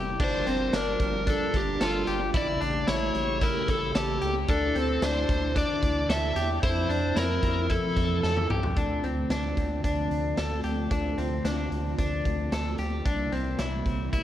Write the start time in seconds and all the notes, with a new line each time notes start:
Already playing: F1 C3 G3 A#3 E4 G4
0.20 G1 G3 D4 F4 A#4, kick, crash
0.24 C5
0.46 G1 C4, closed hi-hat
0.73 G1 D4 A#4, snare, closed hi-hat, tambourine
1.00 G1, kick, closed hi-hat
1.27 D4 A4, kick, closed hi-hat
1.54 G1 G4, kick, closed hi-hat
1.80 G1 F4 A4, snare, closed hi-hat, tambourine
2.07 G1 G4, closed hi-hat
2.34 A1 C#3 A3 E4 G4 D5, kick, closed hi-hat
2.61 A1 D4, closed hi-hat
2.87 A1 E4 C#5, snare, closed hi-hat, tambourine
3.15 A1, closed hi-hat
3.41 E4 A#4, kick, closed hi-hat
3.68 A1 A4, kick, closed hi-hat
3.95 A1 G4 A4, snare, closed hi-hat, tambourine
4.22 C#2 G4, closed hi-hat
4.48 D2 D3 D4 E4 A4 A5, kick, closed hi-hat
4.75 D2 C4, closed hi-hat
5.02 D2 D4 C5, snare, closed hi-hat, tambourine
5.29 D2, kick, closed hi-hat
5.55 D4 D5, kick, closed hi-hat
5.83 D2, kick, closed hi-hat
6.09 D2 A4 E5, snare, closed hi-hat, tambourine
6.35 E2 G4, closed hi-hat
6.62 F2 F3 C4 E4 C5, kick, closed hi-hat
6.89 F2 D4, closed hi-hat
7.16 F2 E4 A#4, snare, closed hi-hat, tambourine
7.43 F2, kick, closed hi-hat
7.70 E4 A4, kick, closed hi-hat
7.97 F2, kick, closed hi-hat
8.23 F2 A4, snare
8.37 high tom
8.50 C2 G4, mid tom
8.63 floor tom
8.76 D2 D3 A3 C4 D4 F4, kick, closed hi-hat
9.03 D2 C4, closed hi-hat
9.30 D2 D4, snare, closed hi-hat
9.57 D2, kick, closed hi-hat
9.84 D2 D4, kick, closed hi-hat
10.11 D2, closed hi-hat
10.37 D2 A4, snare, closed hi-hat
10.64 D2 G4, closed hi-hat
10.91 D2 D4, kick, closed hi-hat
11.17 D2 C4, closed hi-hat
11.44 D2 D4, snare, closed hi-hat
11.71 D2, closed hi-hat
11.98 D2 D4, kick, closed hi-hat
12.25 D2, kick, closed hi-hat
12.52 D2 A4, snare, closed hi-hat
12.78 D2 G4, closed hi-hat
13.05 C2 C3 G3 A#3 D4 E4, kick, closed hi-hat
13.32 C2 C4, closed hi-hat
13.59 C2 E4, snare, closed hi-hat
13.86 C2, kick, closed hi-hat
14.13 C2 E4, kick, closed hi-hat